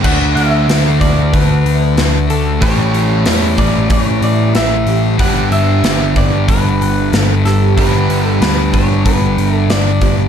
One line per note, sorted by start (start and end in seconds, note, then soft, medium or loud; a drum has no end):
0.03 0.35 D2 medium
0.03 2.60 D3 medium
0.03 0.69 E3 medium
0.03 2.60 A3 medium
0.03 2.60 D4 medium
0.03 2.61 F#4 loud
0.03 0.35 F#5 loud
0.03 kick loud
0.03 crash loud
0.35 0.67 D2 medium
0.35 1.33 A3 medium
0.35 1.00 E5 medium
0.35 open hi-hat soft
0.69 1.00 D2 medium
0.69 1.66 E3 medium
0.69 snare loud
0.69 open hi-hat medium
1.01 1.32 D2 medium
1.01 1.97 D4 medium
1.01 1.34 D5 loud
1.01 kick medium
1.01 open hi-hat soft
1.33 1.64 D2 loud
1.33 2.63 A3 medium
1.33 2.30 B4 medium
1.33 kick loud
1.33 open hi-hat medium
1.66 1.97 D2 medium
1.66 2.61 E3 medium
1.66 open hi-hat soft
1.97 2.28 D2 medium
1.97 2.63 D4 medium
1.97 snare loud
1.97 open hi-hat medium
2.30 2.61 D2 medium
2.30 2.62 F#4 medium
2.30 2.60 A4 medium
2.30 open hi-hat soft
2.61 2.93 A1 medium
2.61 5.18 A2 medium
2.61 3.26 E3 medium
2.61 5.20 E3 medium
2.61 5.21 G3 loud
2.61 5.19 A3 loud
2.61 5.19 C#4 loud
2.61 5.21 G4 medium
2.61 3.58 C#5 loud
2.61 kick loud
2.61 open hi-hat medium
2.94 3.25 A1 medium
2.94 3.89 A3 medium
2.94 open hi-hat soft
3.26 3.57 E2 medium
3.26 4.23 E3 medium
3.26 snare loud
3.26 open hi-hat medium
3.58 3.89 A1 medium
3.58 3.91 D5 medium
3.58 kick medium
3.58 open hi-hat soft
3.90 4.22 A1 medium
3.90 5.20 A3 medium
3.90 4.23 C#5 medium
3.90 kick loud
3.90 open hi-hat medium
4.22 4.54 A1 medium
4.22 5.20 E3 medium
4.22 4.55 D5 medium
4.22 open hi-hat soft
4.55 4.86 A1 medium
4.55 5.20 C#4 medium
4.55 5.01 E5 loud
4.55 snare medium
4.55 open hi-hat medium
4.87 5.21 A1 medium
4.87 7.45 G4 medium
4.87 open hi-hat medium
5.19 5.51 G1 medium
5.19 7.75 G2 medium
5.19 7.75 D3 medium
5.19 5.83 E3 medium
5.19 7.76 G3 medium
5.19 7.76 B3 loud
5.19 7.79 D4 loud
5.19 7.76 G4 loud
5.19 5.52 F#5 loud
5.19 kick loud
5.19 open hi-hat medium
5.52 5.83 G1 medium
5.52 6.47 B3 medium
5.52 6.17 E5 loud
5.52 open hi-hat soft
5.83 6.15 G1 medium
5.83 6.81 E3 medium
5.83 snare loud
5.83 open hi-hat medium
6.16 6.47 G1 medium
6.16 7.12 D4 medium
6.16 6.49 D5 medium
6.16 kick medium
6.16 open hi-hat soft
6.48 6.79 G1 medium
6.48 8.08 B3 medium
6.48 7.19 B4 medium
6.48 kick loud
6.48 open hi-hat medium
6.81 7.12 G1 medium
6.81 7.77 E3 medium
6.81 open hi-hat medium
7.12 7.44 G1 medium
7.12 8.73 D4 medium
7.12 snare loud
7.12 open hi-hat medium
7.19 7.45 A4 medium
7.45 7.76 G1 medium
7.45 9.06 G4 medium
7.45 7.77 A4 medium
7.45 snare soft
7.45 open hi-hat soft
7.77 8.08 G1 medium
7.77 10.29 G2 medium
7.77 10.29 D3 medium
7.77 8.42 E3 medium
7.77 10.29 G3 loud
7.77 10.29 B3 medium
7.77 10.29 D4 loud
7.77 10.29 G4 loud
7.77 8.27 B4 medium
7.77 kick loud
7.77 open hi-hat medium
8.09 8.40 G1 medium
8.09 9.04 B3 medium
8.09 open hi-hat medium
8.27 8.40 A4 medium
8.41 8.72 D2 medium
8.41 9.38 E3 medium
8.41 8.73 B4 medium
8.41 snare loud
8.41 open hi-hat medium
8.73 9.04 G1 medium
8.73 9.68 D4 medium
8.73 9.05 C#5 medium
8.73 kick medium
8.73 open hi-hat soft
9.05 9.36 G1 medium
9.05 10.29 B3 medium
9.05 9.56 B4 medium
9.05 kick medium
9.05 open hi-hat medium
9.38 9.69 G1 medium
9.38 10.29 E3 medium
9.38 open hi-hat soft
9.56 9.70 A4 medium
9.70 10.00 G1 loud
9.70 10.29 D4 medium
9.70 10.15 D5 medium
9.70 snare loud
9.70 open hi-hat medium
10.01 10.29 G1 medium
10.01 10.29 G4 medium
10.01 kick medium
10.01 open hi-hat medium